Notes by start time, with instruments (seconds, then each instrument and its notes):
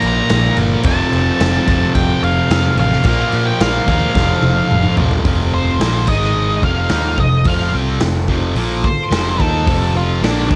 Already playing: distorted electric guitar A#2 F3 A#3, transistor combo organ A#4 D5 F5
0.02 picked electric bass A#1, crash
0.07 lead electric guitar A#5
0.29 picked electric bass A#1, snare, crash
0.57 picked electric bass G1, crash
0.79 transistor combo organ A4 C5 F5
0.83 picked electric bass F1, distorted electric guitar F2 C3 F3, lead electric guitar A5, kick, crash
1.13 picked electric bass F1, crash
1.40 picked electric bass F1, snare, crash
1.67 picked electric bass F1, distorted electric guitar C3 F3, kick, crash
1.71 distorted electric guitar F2
1.95 picked electric bass F1, lead electric guitar G5, kick, crash
2.23 picked electric bass F1, lead electric guitar F5, crash
2.50 picked electric bass F2, snare, crash
2.77 picked electric bass A1, lead electric guitar F5, crash
2.93 snare
3.03 picked electric bass A#1, distorted electric guitar A#2 F3, transistor combo organ A#4 D5, lead electric guitar F5, kick, crash
3.07 distorted electric guitar A#3, transistor combo organ F5
3.32 picked electric bass A#2, crash
3.47 lead electric guitar G5
3.60 picked electric bass A#1, lead electric guitar F5, snare, crash
3.87 picked electric bass D#2, distorted electric guitar F3 A#3, lead electric guitar F5, kick, crash
3.91 distorted electric guitar A#2
4.14 picked electric bass F1, distorted electric guitar F2 C3, transistor combo organ A4 C5 F5, kick, snare
4.19 distorted electric guitar F3
4.43 picked electric bass F1, high tom
4.71 picked electric bass F1, mid tom
4.83 mid tom
4.97 picked electric bass A#1, distorted electric guitar C3 F3, floor tom
5.02 distorted electric guitar F2
5.11 floor tom
5.24 picked electric bass F1, distorted electric guitar F2 C3 F3, transistor combo organ A4 C5 F5, kick, open hi-hat
5.54 lead electric guitar C5
5.80 picked electric bass A#1, distorted electric guitar A#2 F3 A#3, snare, open hi-hat
6.07 picked electric bass G#1, distorted electric guitar G#2 D#3 G#3, transistor combo organ D#4 G#4 D#5, lead electric guitar D#5, kick, crash
6.23 snare
6.62 picked electric bass F1, distorted electric guitar F2 C3 F3, transistor combo organ F4, lead electric guitar F5, kick
6.67 transistor combo organ A4 C5
6.89 picked electric bass D#2, distorted electric guitar D#3 A#3 D#4, snare, open hi-hat
7.17 picked electric bass F1, distorted electric guitar F2 C3, lead electric guitar D#5, kick
7.44 picked electric bass F1, distorted electric guitar F2 C3 F3, lead electric guitar F5, kick, open hi-hat
7.72 picked electric bass C2, distorted electric guitar C3 G3 C4
8.00 picked electric bass F1, distorted electric guitar F2 C3, snare, open hi-hat
8.28 picked electric bass F1, distorted electric guitar F2 C3 F3, kick
8.55 picked electric bass A#1, distorted electric guitar A#2 F3 A#3, open hi-hat
8.84 lead electric guitar C5, muted distorted electric guitar stroke, muted picked electric bass stroke, kick
9.11 picked electric bass F1, distorted electric guitar F2 C3 F3, snare, open hi-hat
9.39 picked electric bass D#2, distorted electric guitar D#3 A#3 D#4, lead electric guitar A4, kick
9.66 picked electric bass F1, distorted electric guitar F2 C3 F3, kick, open hi-hat
9.97 lead electric guitar F4
10.21 picked electric bass A#1, distorted electric guitar A#2 F3 A#3, lead electric guitar D4, snare, open hi-hat
10.50 picked electric bass G#1, distorted electric guitar G#2 D#3 G#3, transistor combo organ D#4, kick